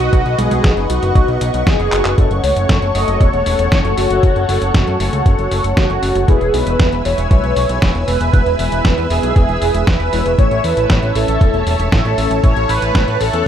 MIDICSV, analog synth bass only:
0, 0, Header, 1, 2, 480
1, 0, Start_track
1, 0, Key_signature, 4, "major"
1, 0, Tempo, 512821
1, 121, Time_signature, 4, 2, 24, 8
1, 12614, End_track
2, 0, Start_track
2, 0, Title_t, "Analog synth bass"
2, 0, Program_c, 0, 38
2, 1, Note_on_c, 0, 35, 84
2, 91, Note_off_c, 0, 35, 0
2, 121, Note_on_c, 0, 35, 106
2, 211, Note_off_c, 0, 35, 0
2, 242, Note_on_c, 0, 35, 78
2, 332, Note_off_c, 0, 35, 0
2, 363, Note_on_c, 0, 35, 93
2, 452, Note_off_c, 0, 35, 0
2, 482, Note_on_c, 0, 35, 81
2, 571, Note_off_c, 0, 35, 0
2, 601, Note_on_c, 0, 35, 99
2, 691, Note_off_c, 0, 35, 0
2, 722, Note_on_c, 0, 30, 76
2, 812, Note_off_c, 0, 30, 0
2, 843, Note_on_c, 0, 35, 98
2, 932, Note_off_c, 0, 35, 0
2, 962, Note_on_c, 0, 30, 81
2, 1052, Note_off_c, 0, 30, 0
2, 1081, Note_on_c, 0, 35, 104
2, 1171, Note_off_c, 0, 35, 0
2, 1202, Note_on_c, 0, 35, 83
2, 1292, Note_off_c, 0, 35, 0
2, 1322, Note_on_c, 0, 35, 95
2, 1411, Note_off_c, 0, 35, 0
2, 1442, Note_on_c, 0, 35, 82
2, 1532, Note_off_c, 0, 35, 0
2, 1560, Note_on_c, 0, 30, 103
2, 1651, Note_off_c, 0, 30, 0
2, 1681, Note_on_c, 0, 30, 77
2, 1771, Note_off_c, 0, 30, 0
2, 1802, Note_on_c, 0, 30, 97
2, 1891, Note_off_c, 0, 30, 0
2, 1921, Note_on_c, 0, 30, 84
2, 2011, Note_off_c, 0, 30, 0
2, 2040, Note_on_c, 0, 30, 101
2, 2131, Note_off_c, 0, 30, 0
2, 2161, Note_on_c, 0, 30, 78
2, 2251, Note_off_c, 0, 30, 0
2, 2280, Note_on_c, 0, 37, 97
2, 2371, Note_off_c, 0, 37, 0
2, 2401, Note_on_c, 0, 30, 84
2, 2491, Note_off_c, 0, 30, 0
2, 2520, Note_on_c, 0, 30, 97
2, 2611, Note_off_c, 0, 30, 0
2, 2641, Note_on_c, 0, 30, 77
2, 2731, Note_off_c, 0, 30, 0
2, 2762, Note_on_c, 0, 30, 99
2, 2851, Note_off_c, 0, 30, 0
2, 2881, Note_on_c, 0, 30, 83
2, 2971, Note_off_c, 0, 30, 0
2, 3001, Note_on_c, 0, 28, 110
2, 3091, Note_off_c, 0, 28, 0
2, 3122, Note_on_c, 0, 28, 80
2, 3211, Note_off_c, 0, 28, 0
2, 3242, Note_on_c, 0, 28, 98
2, 3332, Note_off_c, 0, 28, 0
2, 3361, Note_on_c, 0, 28, 84
2, 3451, Note_off_c, 0, 28, 0
2, 3481, Note_on_c, 0, 30, 108
2, 3571, Note_off_c, 0, 30, 0
2, 3602, Note_on_c, 0, 30, 79
2, 3691, Note_off_c, 0, 30, 0
2, 3722, Note_on_c, 0, 30, 94
2, 3811, Note_off_c, 0, 30, 0
2, 3842, Note_on_c, 0, 30, 82
2, 3931, Note_off_c, 0, 30, 0
2, 3961, Note_on_c, 0, 30, 102
2, 4051, Note_off_c, 0, 30, 0
2, 4081, Note_on_c, 0, 30, 76
2, 4171, Note_off_c, 0, 30, 0
2, 4201, Note_on_c, 0, 30, 99
2, 4291, Note_off_c, 0, 30, 0
2, 4320, Note_on_c, 0, 30, 83
2, 4411, Note_off_c, 0, 30, 0
2, 4441, Note_on_c, 0, 30, 106
2, 4531, Note_off_c, 0, 30, 0
2, 4561, Note_on_c, 0, 42, 78
2, 4651, Note_off_c, 0, 42, 0
2, 4681, Note_on_c, 0, 30, 96
2, 4771, Note_off_c, 0, 30, 0
2, 4801, Note_on_c, 0, 37, 78
2, 4891, Note_off_c, 0, 37, 0
2, 4921, Note_on_c, 0, 30, 102
2, 5011, Note_off_c, 0, 30, 0
2, 5041, Note_on_c, 0, 30, 78
2, 5131, Note_off_c, 0, 30, 0
2, 5161, Note_on_c, 0, 30, 94
2, 5251, Note_off_c, 0, 30, 0
2, 5281, Note_on_c, 0, 30, 83
2, 5371, Note_off_c, 0, 30, 0
2, 5401, Note_on_c, 0, 30, 102
2, 5491, Note_off_c, 0, 30, 0
2, 5522, Note_on_c, 0, 30, 76
2, 5611, Note_off_c, 0, 30, 0
2, 5642, Note_on_c, 0, 30, 93
2, 5731, Note_off_c, 0, 30, 0
2, 5761, Note_on_c, 0, 30, 89
2, 5851, Note_off_c, 0, 30, 0
2, 5881, Note_on_c, 0, 28, 105
2, 5971, Note_off_c, 0, 28, 0
2, 6002, Note_on_c, 0, 28, 78
2, 6091, Note_off_c, 0, 28, 0
2, 6121, Note_on_c, 0, 35, 96
2, 6211, Note_off_c, 0, 35, 0
2, 6241, Note_on_c, 0, 28, 77
2, 6331, Note_off_c, 0, 28, 0
2, 6361, Note_on_c, 0, 28, 103
2, 6451, Note_off_c, 0, 28, 0
2, 6480, Note_on_c, 0, 28, 74
2, 6571, Note_off_c, 0, 28, 0
2, 6601, Note_on_c, 0, 28, 94
2, 6691, Note_off_c, 0, 28, 0
2, 6721, Note_on_c, 0, 28, 82
2, 6811, Note_off_c, 0, 28, 0
2, 6841, Note_on_c, 0, 35, 105
2, 6931, Note_off_c, 0, 35, 0
2, 6961, Note_on_c, 0, 35, 80
2, 7051, Note_off_c, 0, 35, 0
2, 7080, Note_on_c, 0, 35, 96
2, 7171, Note_off_c, 0, 35, 0
2, 7201, Note_on_c, 0, 35, 84
2, 7291, Note_off_c, 0, 35, 0
2, 7321, Note_on_c, 0, 28, 100
2, 7411, Note_off_c, 0, 28, 0
2, 7441, Note_on_c, 0, 28, 78
2, 7531, Note_off_c, 0, 28, 0
2, 7562, Note_on_c, 0, 28, 97
2, 7651, Note_off_c, 0, 28, 0
2, 7682, Note_on_c, 0, 28, 84
2, 7772, Note_off_c, 0, 28, 0
2, 7801, Note_on_c, 0, 28, 105
2, 7891, Note_off_c, 0, 28, 0
2, 7921, Note_on_c, 0, 28, 78
2, 8011, Note_off_c, 0, 28, 0
2, 8041, Note_on_c, 0, 28, 93
2, 8131, Note_off_c, 0, 28, 0
2, 8161, Note_on_c, 0, 28, 84
2, 8251, Note_off_c, 0, 28, 0
2, 8281, Note_on_c, 0, 28, 101
2, 8371, Note_off_c, 0, 28, 0
2, 8401, Note_on_c, 0, 40, 79
2, 8491, Note_off_c, 0, 40, 0
2, 8521, Note_on_c, 0, 28, 91
2, 8611, Note_off_c, 0, 28, 0
2, 8641, Note_on_c, 0, 35, 78
2, 8731, Note_off_c, 0, 35, 0
2, 8761, Note_on_c, 0, 28, 108
2, 8851, Note_off_c, 0, 28, 0
2, 8881, Note_on_c, 0, 28, 78
2, 8971, Note_off_c, 0, 28, 0
2, 9002, Note_on_c, 0, 28, 101
2, 9091, Note_off_c, 0, 28, 0
2, 9121, Note_on_c, 0, 28, 80
2, 9211, Note_off_c, 0, 28, 0
2, 9241, Note_on_c, 0, 28, 104
2, 9331, Note_off_c, 0, 28, 0
2, 9361, Note_on_c, 0, 28, 76
2, 9451, Note_off_c, 0, 28, 0
2, 9481, Note_on_c, 0, 28, 98
2, 9571, Note_off_c, 0, 28, 0
2, 9600, Note_on_c, 0, 28, 89
2, 9691, Note_off_c, 0, 28, 0
2, 9720, Note_on_c, 0, 33, 99
2, 9811, Note_off_c, 0, 33, 0
2, 9841, Note_on_c, 0, 33, 78
2, 9931, Note_off_c, 0, 33, 0
2, 9961, Note_on_c, 0, 40, 91
2, 10051, Note_off_c, 0, 40, 0
2, 10081, Note_on_c, 0, 33, 80
2, 10171, Note_off_c, 0, 33, 0
2, 10201, Note_on_c, 0, 33, 102
2, 10291, Note_off_c, 0, 33, 0
2, 10321, Note_on_c, 0, 33, 79
2, 10411, Note_off_c, 0, 33, 0
2, 10440, Note_on_c, 0, 33, 92
2, 10531, Note_off_c, 0, 33, 0
2, 10560, Note_on_c, 0, 33, 78
2, 10650, Note_off_c, 0, 33, 0
2, 10680, Note_on_c, 0, 28, 103
2, 10771, Note_off_c, 0, 28, 0
2, 10800, Note_on_c, 0, 28, 84
2, 10890, Note_off_c, 0, 28, 0
2, 10920, Note_on_c, 0, 28, 101
2, 11010, Note_off_c, 0, 28, 0
2, 11040, Note_on_c, 0, 28, 85
2, 11130, Note_off_c, 0, 28, 0
2, 11160, Note_on_c, 0, 33, 103
2, 11251, Note_off_c, 0, 33, 0
2, 11280, Note_on_c, 0, 33, 78
2, 11371, Note_off_c, 0, 33, 0
2, 11400, Note_on_c, 0, 33, 100
2, 11491, Note_off_c, 0, 33, 0
2, 11520, Note_on_c, 0, 33, 88
2, 11610, Note_off_c, 0, 33, 0
2, 11640, Note_on_c, 0, 33, 101
2, 11731, Note_off_c, 0, 33, 0
2, 11760, Note_on_c, 0, 33, 80
2, 11850, Note_off_c, 0, 33, 0
2, 11880, Note_on_c, 0, 33, 97
2, 11971, Note_off_c, 0, 33, 0
2, 12000, Note_on_c, 0, 33, 83
2, 12091, Note_off_c, 0, 33, 0
2, 12121, Note_on_c, 0, 33, 103
2, 12211, Note_off_c, 0, 33, 0
2, 12240, Note_on_c, 0, 45, 76
2, 12330, Note_off_c, 0, 45, 0
2, 12361, Note_on_c, 0, 33, 96
2, 12451, Note_off_c, 0, 33, 0
2, 12481, Note_on_c, 0, 40, 79
2, 12571, Note_off_c, 0, 40, 0
2, 12614, End_track
0, 0, End_of_file